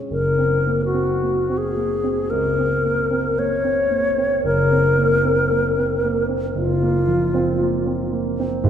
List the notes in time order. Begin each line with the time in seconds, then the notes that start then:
Already playing: G#3 C4 C#4
0.10 F#1 A#4
0.38 C4
0.67 A#3
0.86 F#4
0.94 C4
1.23 A#3
1.49 C4
1.58 G#4
1.76 A#3
2.04 C4
2.30 C#2 A#4
2.58 C4
2.84 A#3
3.11 C4
3.38 A#3 C#5
3.64 C4
3.90 A#3
4.17 C4
4.44 F#1 A#4
4.71 C4
4.98 A#3
5.24 C4
5.51 A#3
5.77 C4
6.04 A#3
6.29 C4
6.55 F#1 F4
6.82 A#3
7.07 F3
7.34 C4
7.60 A#3
7.86 C4
8.12 A#3
8.39 C4
8.64 G#1 G#4